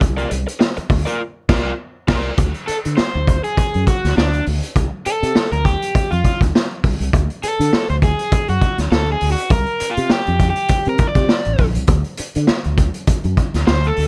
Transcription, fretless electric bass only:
0.02 0.24 C2 loud
0.31 0.43 C2 loud
0.77 muted fretless electric bass stroke soft
0.90 1.02 D2 medium
1.49 1.70 C2 loud
2.08 2.29 C2 loud
2.38 2.51 D2 loud
2.69 muted fretless electric bass stroke soft
2.85 2.95 D3 medium
2.98 muted fretless electric bass stroke soft
3.15 3.37 D2 medium
3.58 muted fretless electric bass stroke soft
3.75 3.84 F#2 medium
4.04 4.14 D2 medium
4.17 4.39 D2 loud
4.47 4.59 D2 medium
4.76 4.88 C2 loud
5.06 muted fretless electric bass stroke soft
5.22 5.32 C3 medium
5.35 muted fretless electric bass stroke soft
5.52 5.74 D2 medium
5.95 muted fretless electric bass stroke soft
6.12 6.21 F2 medium
6.41 6.51 D2 medium
6.84 6.96 C2 medium
7.00 7.13 C2 medium
7.14 7.26 D2 loud
7.43 muted fretless electric bass stroke soft
7.59 7.69 D3 medium
7.73 muted fretless electric bass stroke soft
7.89 8.11 D2 medium
8.32 muted fretless electric bass stroke soft
8.49 8.58 F#2 medium
8.78 8.88 D2 medium
8.91 9.13 D2 loud
9.21 9.34 D2 medium
9.51 9.63 C2 loud
9.81 muted fretless electric bass stroke soft
9.97 10.07 C3 medium
10.10 muted fretless electric bass stroke soft
10.27 10.49 F2 medium
10.86 10.96 C3 medium
11.15 11.25 C3 medium
11.46 11.58 A1 medium
11.59 11.76 A#1 medium
11.76 11.86 C2 medium
11.88 12.01 D2 loud
12.19 muted fretless electric bass stroke medium
12.36 12.45 D3 medium
12.49 muted fretless electric bass stroke soft
12.65 12.87 D2 medium
13.08 muted fretless electric bass stroke soft
13.24 13.34 F#2 medium
13.54 13.64 D2 medium
13.68 13.90 D2 medium
13.97 14.08 D2 medium

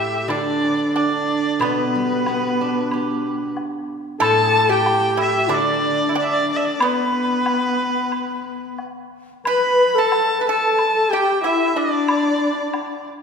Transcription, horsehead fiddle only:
0.00 0.32 G4 medium
0.31 0.96 D4 medium
0.97 1.64 D4 medium
1.62 3.57 B3 medium
4.21 4.71 A4 medium
4.70 5.51 G4 medium
5.50 6.14 D4 medium
6.15 6.81 D4 medium
6.79 8.78 B3 medium
9.47 9.96 B4 medium
9.95 10.44 A4 medium
10.45 11.11 A4 medium
11.10 11.43 G4 medium
11.42 11.77 E4 medium
11.76 13.06 D4 medium

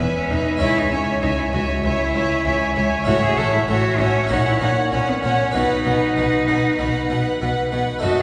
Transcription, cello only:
0.00 0.15 B3 medium
0.16 0.32 C#4 medium
0.30 0.61 D#4 medium
0.62 0.80 E4 medium
0.78 0.91 D#4 medium
0.92 1.00 C#4 medium
1.22 1.28 D#4 medium
1.39 1.45 E4 medium
1.54 1.62 F#4 medium
1.85 3.05 E4 medium
3.07 3.14 F#4 medium
3.23 3.39 G#4 medium
3.38 3.53 A4 medium
3.53 3.60 E4 medium
3.69 4.01 F#4 medium
4.00 4.32 C#4 medium
4.30 4.46 D#4 medium
4.47 4.61 E4 medium
4.61 4.69 D#4 medium
4.92 5.10 C#4 medium
5.09 5.23 B3 medium
5.24 5.56 C#4 medium
5.54 7.72 D#4 medium
8.03 8.22 F#4 medium

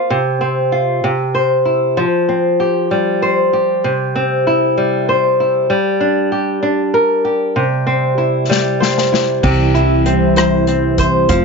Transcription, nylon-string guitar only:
0.00 0.10 A#3 medium
0.00 0.40 C4 medium
0.00 0.17 F4 soft
0.00 1.34 C5 medium
0.10 1.03 C3 medium
0.41 2.28 C4 soft
0.72 1.10 F4 soft
1.04 2.04 C3 medium
1.35 3.22 C5 soft
1.65 2.03 E4 soft
1.97 3.85 F3 medium
2.29 3.91 C4 soft
2.60 3.53 G4 soft
2.91 4.77 G3 medium
3.22 3.91 C5 soft
3.53 4.47 G4 soft
3.84 5.70 C3 medium
4.16 5.76 C4 soft
4.47 5.39 E4 soft
4.78 5.69 G3 medium
5.09 5.76 C5 medium
5.40 5.77 E4 soft
5.70 8.49 G3 medium
6.00 6.61 D4 soft
6.32 7.24 G4 soft
6.63 7.62 D4 medium
6.94 7.62 A#4 medium
7.25 8.17 G4 soft
7.56 9.42 C3 medium
7.87 10.06 C4 soft
8.18 9.12 E4 soft
8.49 9.49 G3 medium
8.80 10.36 C5 soft
9.12 9.49 E4 soft
9.43 11.29 C3 medium
9.74 11.35 E4 soft
10.06 10.68 C4 soft
10.37 10.99 C5 medium
10.68 11.36 C4 soft
10.99 11.36 C5 medium
11.29 11.45 F3 medium

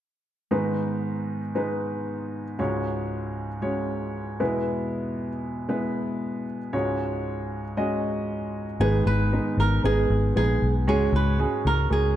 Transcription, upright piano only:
0.51 2.55 G#2 medium
0.51 2.55 D#3 medium
0.51 1.39 G#3 medium
0.51 1.39 B3 medium
0.51 1.39 D#4 medium
0.51 1.40 B4 medium
1.55 2.43 G#3 medium
1.55 2.43 B3 medium
1.55 2.43 D#4 medium
1.55 2.43 B4 medium
2.59 4.37 C#2 medium
2.59 4.36 G#2 medium
2.59 3.47 G#3 medium
2.59 3.47 C#4 medium
2.59 3.47 F#4 medium
2.59 3.47 C#5 medium
3.62 4.38 G#3 medium
3.62 4.40 C#4 medium
3.62 4.40 F#4 medium
3.62 4.40 C#5 medium
4.40 6.43 E2 soft
4.40 6.44 B2 medium
4.40 5.28 G#3 medium
4.40 5.28 B3 medium
4.40 5.28 E4 medium
4.40 5.28 B4 medium
5.68 6.57 G#3 medium
5.68 6.57 B3 medium
5.68 6.57 E4 medium
5.68 6.58 B4 medium
6.73 8.76 C#2 medium
6.73 8.77 G#2 medium
6.73 7.61 G#3 medium
6.73 7.61 C#4 medium
6.73 7.61 F#4 medium
6.73 7.61 C#5 medium
7.77 8.65 G#3 medium
7.77 8.65 C#4 medium
7.77 8.65 F#4 medium
7.77 8.65 D#5 medium
8.80 9.55 G#2 medium
8.80 9.54 D#3 medium
8.80 9.25 G#3 medium
8.80 9.25 B3 medium
8.80 9.25 D#4 medium
8.80 9.25 B4 medium
9.33 9.77 G#3 medium
9.33 9.77 B3 medium
9.33 9.77 D#4 medium
9.33 9.77 B4 medium
9.84 10.28 G#3 medium
9.84 10.28 B3 soft
9.84 10.28 D#4 medium
9.84 10.28 B4 medium
10.36 10.80 G#3 medium
10.36 10.80 B3 medium
10.36 10.80 D#4 medium
10.36 10.80 B4 medium
10.87 11.61 G#2 medium
10.87 11.32 G#3 medium
10.87 11.32 C#4 medium
10.87 11.32 F#4 medium
10.87 11.32 C#5 medium
11.39 11.83 G#3 medium
11.39 11.84 C#4 medium
11.39 11.84 F#4 medium
11.39 11.84 G#4 medium
11.90 12.16 G#3 medium
11.90 12.16 C#4 medium
11.90 12.16 F#4 medium
11.90 12.16 A#4 medium

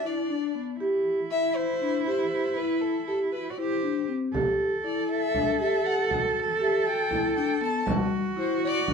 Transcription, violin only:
0.06 0.62 D5 medium
1.31 1.57 E5 loud
1.56 2.05 C5 loud
2.06 2.30 C5 loud
2.31 2.58 C5 medium
2.56 2.82 B4 medium
2.81 3.07 A4 medium
3.08 3.19 A4 medium
3.32 3.49 B4 medium
3.52 3.59 D5 medium
3.58 4.15 C5 medium
4.84 5.08 D5 medium
5.11 5.57 E5 loud
5.61 5.87 E5 medium
5.86 6.11 F#5 loud
6.61 6.88 E5 medium
6.86 7.35 G5 loud
7.36 7.60 G5 medium
7.63 7.86 A5 loud
8.39 8.62 C5 medium
8.64 8.94 D5 loud

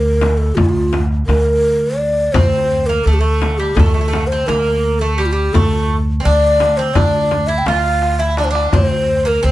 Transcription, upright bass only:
0.00 0.53 D2 medium
0.57 1.24 D2 medium
1.28 2.30 D2 medium
2.34 3.01 D2 medium
3.06 3.73 D2 medium
3.76 4.44 D2 medium
4.48 5.50 D2 medium
5.54 6.21 D2 medium
6.25 6.92 D2 medium
6.96 7.63 D2 medium
7.66 8.69 D2 medium
8.72 9.40 D2 medium
9.44 9.52 D2 medium

